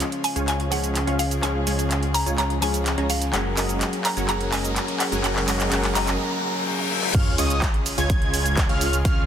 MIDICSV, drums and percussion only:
0, 0, Header, 1, 2, 480
1, 0, Start_track
1, 0, Key_signature, -5, "major"
1, 0, Tempo, 476190
1, 1442, Time_signature, 4, 2, 24, 8
1, 9335, End_track
2, 0, Start_track
2, 0, Title_t, "Drums"
2, 3, Note_on_c, 9, 39, 47
2, 3, Note_on_c, 9, 42, 82
2, 7, Note_on_c, 9, 82, 34
2, 104, Note_off_c, 9, 39, 0
2, 104, Note_off_c, 9, 42, 0
2, 108, Note_off_c, 9, 82, 0
2, 123, Note_on_c, 9, 42, 37
2, 224, Note_off_c, 9, 42, 0
2, 243, Note_on_c, 9, 46, 99
2, 247, Note_on_c, 9, 82, 72
2, 344, Note_off_c, 9, 46, 0
2, 348, Note_off_c, 9, 82, 0
2, 363, Note_on_c, 9, 42, 51
2, 367, Note_on_c, 9, 82, 43
2, 464, Note_off_c, 9, 42, 0
2, 468, Note_off_c, 9, 82, 0
2, 483, Note_on_c, 9, 39, 50
2, 483, Note_on_c, 9, 42, 82
2, 487, Note_on_c, 9, 82, 33
2, 584, Note_off_c, 9, 39, 0
2, 584, Note_off_c, 9, 42, 0
2, 588, Note_off_c, 9, 82, 0
2, 603, Note_on_c, 9, 42, 37
2, 703, Note_off_c, 9, 42, 0
2, 723, Note_on_c, 9, 46, 98
2, 726, Note_on_c, 9, 82, 73
2, 823, Note_off_c, 9, 46, 0
2, 827, Note_off_c, 9, 82, 0
2, 843, Note_on_c, 9, 42, 52
2, 847, Note_on_c, 9, 82, 43
2, 944, Note_off_c, 9, 42, 0
2, 947, Note_off_c, 9, 82, 0
2, 963, Note_on_c, 9, 39, 53
2, 963, Note_on_c, 9, 42, 86
2, 966, Note_on_c, 9, 82, 34
2, 1063, Note_off_c, 9, 39, 0
2, 1063, Note_off_c, 9, 42, 0
2, 1067, Note_off_c, 9, 82, 0
2, 1083, Note_on_c, 9, 42, 36
2, 1184, Note_off_c, 9, 42, 0
2, 1202, Note_on_c, 9, 46, 106
2, 1206, Note_on_c, 9, 82, 77
2, 1303, Note_off_c, 9, 46, 0
2, 1307, Note_off_c, 9, 82, 0
2, 1323, Note_on_c, 9, 42, 56
2, 1327, Note_on_c, 9, 82, 46
2, 1424, Note_off_c, 9, 42, 0
2, 1427, Note_off_c, 9, 82, 0
2, 1443, Note_on_c, 9, 39, 58
2, 1443, Note_on_c, 9, 42, 76
2, 1447, Note_on_c, 9, 82, 32
2, 1544, Note_off_c, 9, 39, 0
2, 1544, Note_off_c, 9, 42, 0
2, 1548, Note_off_c, 9, 82, 0
2, 1682, Note_on_c, 9, 46, 103
2, 1686, Note_on_c, 9, 82, 75
2, 1783, Note_off_c, 9, 46, 0
2, 1787, Note_off_c, 9, 82, 0
2, 1803, Note_on_c, 9, 42, 52
2, 1807, Note_on_c, 9, 82, 40
2, 1904, Note_off_c, 9, 42, 0
2, 1907, Note_off_c, 9, 82, 0
2, 1922, Note_on_c, 9, 39, 59
2, 1922, Note_on_c, 9, 42, 80
2, 1926, Note_on_c, 9, 82, 32
2, 2023, Note_off_c, 9, 39, 0
2, 2023, Note_off_c, 9, 42, 0
2, 2027, Note_off_c, 9, 82, 0
2, 2042, Note_on_c, 9, 42, 37
2, 2143, Note_off_c, 9, 42, 0
2, 2162, Note_on_c, 9, 46, 108
2, 2166, Note_on_c, 9, 82, 72
2, 2263, Note_off_c, 9, 46, 0
2, 2267, Note_off_c, 9, 82, 0
2, 2282, Note_on_c, 9, 42, 52
2, 2286, Note_on_c, 9, 82, 41
2, 2383, Note_off_c, 9, 42, 0
2, 2387, Note_off_c, 9, 82, 0
2, 2402, Note_on_c, 9, 39, 66
2, 2402, Note_on_c, 9, 42, 79
2, 2406, Note_on_c, 9, 82, 32
2, 2503, Note_off_c, 9, 39, 0
2, 2503, Note_off_c, 9, 42, 0
2, 2507, Note_off_c, 9, 82, 0
2, 2522, Note_on_c, 9, 42, 36
2, 2623, Note_off_c, 9, 42, 0
2, 2642, Note_on_c, 9, 46, 101
2, 2646, Note_on_c, 9, 82, 74
2, 2743, Note_off_c, 9, 46, 0
2, 2747, Note_off_c, 9, 82, 0
2, 2761, Note_on_c, 9, 42, 53
2, 2765, Note_on_c, 9, 82, 42
2, 2862, Note_off_c, 9, 42, 0
2, 2866, Note_off_c, 9, 82, 0
2, 2882, Note_on_c, 9, 39, 68
2, 2882, Note_on_c, 9, 42, 78
2, 2886, Note_on_c, 9, 82, 33
2, 2983, Note_off_c, 9, 39, 0
2, 2983, Note_off_c, 9, 42, 0
2, 2987, Note_off_c, 9, 82, 0
2, 3002, Note_on_c, 9, 42, 35
2, 3103, Note_off_c, 9, 42, 0
2, 3122, Note_on_c, 9, 46, 107
2, 3126, Note_on_c, 9, 82, 76
2, 3222, Note_off_c, 9, 46, 0
2, 3226, Note_off_c, 9, 82, 0
2, 3241, Note_on_c, 9, 42, 59
2, 3245, Note_on_c, 9, 82, 44
2, 3342, Note_off_c, 9, 42, 0
2, 3346, Note_off_c, 9, 82, 0
2, 3361, Note_on_c, 9, 39, 74
2, 3361, Note_on_c, 9, 42, 74
2, 3365, Note_on_c, 9, 82, 31
2, 3462, Note_off_c, 9, 39, 0
2, 3462, Note_off_c, 9, 42, 0
2, 3466, Note_off_c, 9, 82, 0
2, 3601, Note_on_c, 9, 39, 76
2, 3601, Note_on_c, 9, 46, 108
2, 3605, Note_on_c, 9, 82, 73
2, 3702, Note_off_c, 9, 39, 0
2, 3702, Note_off_c, 9, 46, 0
2, 3706, Note_off_c, 9, 82, 0
2, 3721, Note_on_c, 9, 42, 49
2, 3725, Note_on_c, 9, 82, 43
2, 3822, Note_off_c, 9, 42, 0
2, 3826, Note_off_c, 9, 82, 0
2, 3841, Note_on_c, 9, 39, 75
2, 3841, Note_on_c, 9, 42, 79
2, 3845, Note_on_c, 9, 82, 32
2, 3941, Note_off_c, 9, 39, 0
2, 3941, Note_off_c, 9, 42, 0
2, 3945, Note_off_c, 9, 82, 0
2, 3961, Note_on_c, 9, 42, 38
2, 4062, Note_off_c, 9, 42, 0
2, 4081, Note_on_c, 9, 39, 78
2, 4081, Note_on_c, 9, 46, 108
2, 4085, Note_on_c, 9, 82, 74
2, 4182, Note_off_c, 9, 39, 0
2, 4182, Note_off_c, 9, 46, 0
2, 4186, Note_off_c, 9, 82, 0
2, 4201, Note_on_c, 9, 42, 48
2, 4205, Note_on_c, 9, 82, 42
2, 4302, Note_off_c, 9, 42, 0
2, 4306, Note_off_c, 9, 82, 0
2, 4321, Note_on_c, 9, 39, 85
2, 4321, Note_on_c, 9, 42, 79
2, 4325, Note_on_c, 9, 82, 33
2, 4422, Note_off_c, 9, 39, 0
2, 4422, Note_off_c, 9, 42, 0
2, 4426, Note_off_c, 9, 82, 0
2, 4441, Note_on_c, 9, 42, 37
2, 4542, Note_off_c, 9, 42, 0
2, 4561, Note_on_c, 9, 39, 82
2, 4561, Note_on_c, 9, 46, 112
2, 4565, Note_on_c, 9, 82, 72
2, 4662, Note_off_c, 9, 39, 0
2, 4662, Note_off_c, 9, 46, 0
2, 4666, Note_off_c, 9, 82, 0
2, 4681, Note_on_c, 9, 42, 52
2, 4685, Note_on_c, 9, 82, 42
2, 4782, Note_off_c, 9, 42, 0
2, 4786, Note_off_c, 9, 82, 0
2, 4801, Note_on_c, 9, 39, 89
2, 4801, Note_on_c, 9, 42, 83
2, 4805, Note_on_c, 9, 82, 31
2, 4902, Note_off_c, 9, 39, 0
2, 4902, Note_off_c, 9, 42, 0
2, 4906, Note_off_c, 9, 82, 0
2, 4922, Note_on_c, 9, 42, 37
2, 5023, Note_off_c, 9, 42, 0
2, 5042, Note_on_c, 9, 39, 91
2, 5042, Note_on_c, 9, 46, 114
2, 5046, Note_on_c, 9, 82, 77
2, 5143, Note_off_c, 9, 39, 0
2, 5143, Note_off_c, 9, 46, 0
2, 5147, Note_off_c, 9, 82, 0
2, 5163, Note_on_c, 9, 42, 54
2, 5166, Note_on_c, 9, 82, 46
2, 5263, Note_off_c, 9, 42, 0
2, 5267, Note_off_c, 9, 82, 0
2, 5283, Note_on_c, 9, 39, 88
2, 5283, Note_on_c, 9, 42, 72
2, 5287, Note_on_c, 9, 82, 32
2, 5384, Note_off_c, 9, 39, 0
2, 5384, Note_off_c, 9, 42, 0
2, 5387, Note_off_c, 9, 82, 0
2, 5401, Note_on_c, 9, 39, 81
2, 5502, Note_off_c, 9, 39, 0
2, 5522, Note_on_c, 9, 39, 95
2, 5522, Note_on_c, 9, 46, 109
2, 5525, Note_on_c, 9, 82, 80
2, 5622, Note_off_c, 9, 39, 0
2, 5622, Note_off_c, 9, 46, 0
2, 5626, Note_off_c, 9, 82, 0
2, 5642, Note_on_c, 9, 39, 79
2, 5642, Note_on_c, 9, 42, 49
2, 5646, Note_on_c, 9, 82, 43
2, 5743, Note_off_c, 9, 39, 0
2, 5743, Note_off_c, 9, 42, 0
2, 5747, Note_off_c, 9, 82, 0
2, 5762, Note_on_c, 9, 39, 99
2, 5762, Note_on_c, 9, 42, 79
2, 5766, Note_on_c, 9, 82, 32
2, 5863, Note_off_c, 9, 39, 0
2, 5863, Note_off_c, 9, 42, 0
2, 5866, Note_off_c, 9, 82, 0
2, 5881, Note_on_c, 9, 39, 87
2, 5881, Note_on_c, 9, 42, 38
2, 5982, Note_off_c, 9, 39, 0
2, 5982, Note_off_c, 9, 42, 0
2, 6002, Note_on_c, 9, 39, 95
2, 6002, Note_on_c, 9, 46, 108
2, 6005, Note_on_c, 9, 82, 76
2, 6102, Note_off_c, 9, 39, 0
2, 6102, Note_off_c, 9, 46, 0
2, 6106, Note_off_c, 9, 82, 0
2, 6122, Note_on_c, 9, 39, 88
2, 6122, Note_on_c, 9, 42, 51
2, 6126, Note_on_c, 9, 82, 42
2, 6222, Note_off_c, 9, 39, 0
2, 6222, Note_off_c, 9, 42, 0
2, 6226, Note_off_c, 9, 82, 0
2, 6722, Note_on_c, 9, 48, 65
2, 6823, Note_off_c, 9, 48, 0
2, 6842, Note_on_c, 9, 48, 67
2, 6943, Note_off_c, 9, 48, 0
2, 7082, Note_on_c, 9, 45, 93
2, 7183, Note_off_c, 9, 45, 0
2, 7202, Note_on_c, 9, 36, 124
2, 7202, Note_on_c, 9, 42, 84
2, 7202, Note_on_c, 9, 49, 99
2, 7206, Note_on_c, 9, 82, 35
2, 7303, Note_off_c, 9, 36, 0
2, 7303, Note_off_c, 9, 42, 0
2, 7303, Note_off_c, 9, 49, 0
2, 7307, Note_off_c, 9, 82, 0
2, 7442, Note_on_c, 9, 46, 105
2, 7446, Note_on_c, 9, 82, 78
2, 7543, Note_off_c, 9, 46, 0
2, 7547, Note_off_c, 9, 82, 0
2, 7563, Note_on_c, 9, 42, 52
2, 7567, Note_on_c, 9, 82, 43
2, 7664, Note_off_c, 9, 42, 0
2, 7667, Note_off_c, 9, 82, 0
2, 7681, Note_on_c, 9, 39, 119
2, 7682, Note_on_c, 9, 36, 114
2, 7682, Note_on_c, 9, 42, 84
2, 7686, Note_on_c, 9, 82, 32
2, 7781, Note_off_c, 9, 39, 0
2, 7783, Note_off_c, 9, 36, 0
2, 7783, Note_off_c, 9, 42, 0
2, 7787, Note_off_c, 9, 82, 0
2, 7803, Note_on_c, 9, 42, 40
2, 7903, Note_off_c, 9, 42, 0
2, 7922, Note_on_c, 9, 46, 103
2, 7926, Note_on_c, 9, 82, 80
2, 8023, Note_off_c, 9, 46, 0
2, 8027, Note_off_c, 9, 82, 0
2, 8043, Note_on_c, 9, 42, 54
2, 8047, Note_on_c, 9, 82, 42
2, 8143, Note_off_c, 9, 42, 0
2, 8147, Note_off_c, 9, 82, 0
2, 8163, Note_on_c, 9, 36, 126
2, 8163, Note_on_c, 9, 42, 83
2, 8167, Note_on_c, 9, 82, 35
2, 8263, Note_off_c, 9, 36, 0
2, 8263, Note_off_c, 9, 42, 0
2, 8267, Note_off_c, 9, 82, 0
2, 8283, Note_on_c, 9, 42, 41
2, 8384, Note_off_c, 9, 42, 0
2, 8403, Note_on_c, 9, 46, 102
2, 8407, Note_on_c, 9, 82, 75
2, 8504, Note_off_c, 9, 46, 0
2, 8508, Note_off_c, 9, 82, 0
2, 8523, Note_on_c, 9, 42, 55
2, 8527, Note_on_c, 9, 82, 45
2, 8624, Note_off_c, 9, 42, 0
2, 8628, Note_off_c, 9, 82, 0
2, 8642, Note_on_c, 9, 39, 127
2, 8643, Note_on_c, 9, 36, 113
2, 8643, Note_on_c, 9, 42, 84
2, 8647, Note_on_c, 9, 82, 33
2, 8742, Note_off_c, 9, 39, 0
2, 8744, Note_off_c, 9, 36, 0
2, 8744, Note_off_c, 9, 42, 0
2, 8748, Note_off_c, 9, 82, 0
2, 8763, Note_on_c, 9, 42, 39
2, 8864, Note_off_c, 9, 42, 0
2, 8882, Note_on_c, 9, 46, 106
2, 8886, Note_on_c, 9, 82, 81
2, 8983, Note_off_c, 9, 46, 0
2, 8987, Note_off_c, 9, 82, 0
2, 9003, Note_on_c, 9, 42, 61
2, 9007, Note_on_c, 9, 82, 48
2, 9104, Note_off_c, 9, 42, 0
2, 9107, Note_off_c, 9, 82, 0
2, 9123, Note_on_c, 9, 36, 120
2, 9123, Note_on_c, 9, 42, 77
2, 9127, Note_on_c, 9, 82, 31
2, 9224, Note_off_c, 9, 36, 0
2, 9224, Note_off_c, 9, 42, 0
2, 9227, Note_off_c, 9, 82, 0
2, 9335, End_track
0, 0, End_of_file